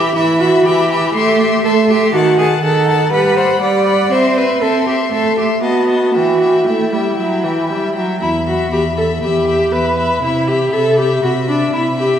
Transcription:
Already playing: G4 E5 B5
0.15 E3 E4 E5 B5
0.40 F#4 E5 B5
0.65 E3 G4 E5 B5
0.91 E5 B5
1.15 A3 G4 E5 C6
1.40 E5 C6
1.65 A3 A4 E5 C6
1.89 G4 E5 C6
2.14 D#3 F#4 F#5 A5
2.38 G#4 F#5 A5
2.63 D#3 A4 F#5 A5
2.88 F#5 A5
3.12 G3 B4 F#5 B5
3.37 C5 F#5 B5
3.62 G3 D5 F#5 B5
3.87 F#5 B5
4.11 C4 C5 E5 C6
4.37 B4 E5 C6
4.62 C4 A4 E5 C6
4.87 G4 E5 C6
5.12 A3 A4 E5 C6
5.38 G4 E5 C6
5.62 B3 F#4 D#5 A5
5.88 D#5 A5
6.15 E3 F#4 E5 G5
6.41 E5 G5
6.67 A3 E4 E5 G5
6.93 G3 E5 G5
7.18 F#3 E5 G5
7.44 E3 E5 G5
7.70 G3 E5 G5
7.95 F#3 E5 G5
8.21 E2 E4 E5 B5
8.46 F#4 E5 B5
8.72 E2 G4 E5 B5
8.97 A4 E5 B5
9.22 E2 G4 E5 B5
9.48 E5 B5
9.72 E2 B4 E5 B5
9.98 E5 B5
10.22 C3 E4 E5 B5
10.48 G4 E5 B5
10.73 C3 A4 E5 B5
10.97 G4 E5 B5
11.23 C3 F#4 E5 B5
11.48 D4 E5 B5
11.73 C3 E4 E5 B5
11.98 G4 E5 B5

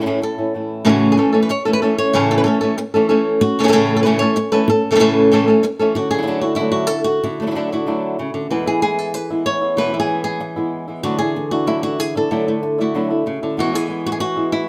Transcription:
Already playing: A2 C#4 E4 G#4
0.01 E3 A3 C#4 E4
0.06 A2 E3 A3 C#4 E4
0.22 A4, muted nylon-string guitar stroke
0.38 A3 C#4 E4
0.54 E3 A3 C#4 E4
0.85 A2 C#3 E3 A3 C#4 A4
0.89 F#4
1.12 G#4
1.17 E3 A3 C#4 A4
1.33 E3 A3 C#4 A4
1.43 B4
1.49 C#5, muted nylon-string guitar stroke
1.65 E3 A3 C#4 A4
1.73 B4
1.82 E3 A3 C#4 A4
1.98 C#5
2.13 A2 C#3 E3 A3 C#4 A4 B4
2.31 A4
2.38 B4
2.44 E3 A3 C#4 A4
2.61 E3 A3 C#4 A4
2.78 muted nylon-string guitar stroke
2.94 E3 A3 C#4 A4
3.09 E3 A3 C#4 A4
3.41 F#4, muted nylon-string guitar stroke
3.59 C#3 E3 A3 C#4 A4
3.64 C#3 E3 A3 C#4 G#4 A4
3.68 C#3 E3 A3 C#4 A4
3.72 A2 C#3 E3 A3 C#4 A4
3.96 A4
4.03 A2 C#3 E3 A3 C#4 B4
4.07 A4
4.19 A3 C#4 A4 C#5
4.23 E3
4.36 muted nylon-string guitar stroke
4.52 E3 A3 C#4 A4 B4
4.68 A4, muted nylon-string guitar stroke
4.91 C#3 E3 A3 C#4 A4
4.96 C#3 E3 A3 C#4 A4
5.00 A2 C#3 E3 A3 C#4 A4
5.32 A2 C#3 E3 A3 C#4 A4
5.48 E3 A3 C#4 A4
5.63 muted nylon-string guitar stroke
5.79 E3 A3 C#4 A4
5.95 D3 F#4, muted nylon-string guitar stroke
6.11 F#3 A3 D4 E4 G#4
6.18 F#3 A3 D4 E4
6.22 F#3 A3 D4 E4
6.27 D3 F#3 A3 D4 E4
6.41 A3 D4 E4 F#4
6.55 E4 F#4
6.60 D3 F#3 A3 D4 E4
6.72 F#4
6.87 A4
6.91 muted nylon-string guitar stroke
7.04 F#4
7.24 D3 E4, muted nylon-string guitar stroke
7.40 F#3 A3 D4 E4
7.47 F#3 A3 D4 E4
7.51 F#3 A3 D4 E4
7.55 D3 F#3 A3 D4 E4
7.72 A3 D4 E4 F#4
7.86 D3 F#3 A3 D4 E4
8.18 C#3, muted nylon-string guitar stroke
8.34 D3
8.50 E2 B2 E3 G#3 B3 E4 B4
8.66 E3 G#3 B3 E4 G#4
8.82 E3 G#3 B3 E4 G#4
8.99 A4
9.14 B4, muted nylon-string guitar stroke
9.30 E3 G#3 B3 E4
9.46 C#5
9.61 E3 G#3 B3 E4
9.77 E2 B2 E3 G#3 B3 E4 B4
9.93 E3 G#3 B3 E4
10.00 G#4
10.08 E3 G#3 B3 E4
10.24 G#4
10.40 muted nylon-string guitar stroke
10.56 E3 G#3 B3 E4
10.88 E3 G#3 B3 E4
11.03 D3 F#3 A3 D4 E4 F#4
11.19 A3 D4 E4 G#4
11.36 muted nylon-string guitar stroke
11.51 A3 D4 E4 F#4
11.67 D3 F#3 A3 D4 E4
11.83 A3 D4 E4 F#4
11.99 G#4, muted nylon-string guitar stroke
12.15 A3 D4 E4 A4
12.31 D3 F#3 A3 D4 E4
12.47 A3 D4 E4
12.62 muted nylon-string guitar stroke
12.78 A3 D4 E4 F#4
12.95 D3 F#3 A3 D4 E4
13.10 A3 D4 E4
13.26 C#3, muted nylon-string guitar stroke
13.42 D3 A3 D4 E4
13.57 E2 B2 E3 G#3 B3 E4 F#4
13.73 E3 G#3 B3 E4 G#4
13.88 E3 G#3 B3 E4
14.06 F#4
14.12 G#4
14.20 F#4, muted nylon-string guitar stroke
14.36 E3 G#3 B3 E4
14.52 E4

